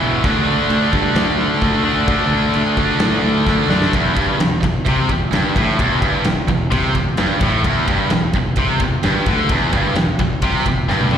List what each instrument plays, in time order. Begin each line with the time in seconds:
Already playing: distorted electric guitar E2 B2 E3
0.00 fingered electric bass E1, distorted electric guitar E2 B2 E3
0.22 fingered electric bass D2, distorted electric guitar D3 A3 D4, kick, china
0.70 fingered electric bass D2, china
0.92 fingered electric bass G2, distorted electric guitar D3 A3 D4, kick
1.15 fingered electric bass D2, snare, china
1.61 fingered electric bass D2, distorted electric guitar D3 A3, kick, china
1.66 distorted electric guitar D4
1.84 fingered electric bass D2, distorted electric guitar A3 D4
1.89 distorted electric guitar D3
2.08 fingered electric bass D2, distorted electric guitar D3 A3 D4, kick, china
2.31 fingered electric bass D2
2.54 fingered electric bass D2, china
2.77 distorted electric guitar D3 A3 D4, kick
2.99 fingered electric bass A2, snare, china
3.23 fingered electric bass D2
3.46 fingered electric bass D2, distorted electric guitar D3 A3 D4, kick, snare
3.69 fingered electric bass F#2, distorted electric guitar A3 D4, snare
3.73 distorted electric guitar D3
3.82 snare
3.93 fingered electric bass E1, distorted electric guitar E2, kick, ride
4.15 fingered electric bass G1, distorted electric guitar G2, kick, ride
4.37 fingered electric bass E1, distorted electric guitar E2, ride
4.41 snare
4.61 fingered electric bass E1, distorted electric guitar E2, kick, ride
4.85 fingered electric bass C2, distorted electric guitar C3, kick, ride
5.09 fingered electric bass E1, distorted electric guitar E2, kick, ride
5.31 fingered electric bass G1, distorted electric guitar G2, snare, ride
5.55 fingered electric bass A1, distorted electric guitar A2, kick, ride
5.78 fingered electric bass E1, distorted electric guitar E2, kick, ride
6.02 fingered electric bass G1, distorted electric guitar G2, kick, ride
6.24 fingered electric bass E1, distorted electric guitar E2, snare, ride
6.48 fingered electric bass E1, distorted electric guitar E2, kick, ride
6.71 fingered electric bass C2, distorted electric guitar C3, kick, ride
6.94 fingered electric bass E1, distorted electric guitar E2, kick, ride
7.17 fingered electric bass G1, distorted electric guitar G2, snare, ride
7.41 fingered electric bass A1, distorted electric guitar A2, kick, ride
7.64 fingered electric bass E1, distorted electric guitar E2, kick, ride
7.88 fingered electric bass G1, distorted electric guitar G2, kick, ride
8.10 fingered electric bass E1, distorted electric guitar E2, snare, ride
8.33 fingered electric bass E1, distorted electric guitar E2, kick, ride
8.56 fingered electric bass C2, distorted electric guitar C3, kick, ride
8.80 fingered electric bass E1, distorted electric guitar E2, kick, ride
9.03 fingered electric bass G1, distorted electric guitar G2, snare, ride
9.26 fingered electric bass D2, distorted electric guitar D3, kick, ride
9.49 fingered electric bass E1, distorted electric guitar E2, kick, ride
9.73 fingered electric bass G1, distorted electric guitar G2, kick, ride
9.95 fingered electric bass E1, distorted electric guitar E2, snare, ride
10.19 fingered electric bass E1, distorted electric guitar E2, kick, ride
10.42 fingered electric bass C2, distorted electric guitar C3, kick, ride
10.66 fingered electric bass E1, distorted electric guitar E2, kick, ride
10.88 fingered electric bass G1, distorted electric guitar G2, snare
11.01 high tom
11.11 fingered electric bass D2, distorted electric guitar D3, mid tom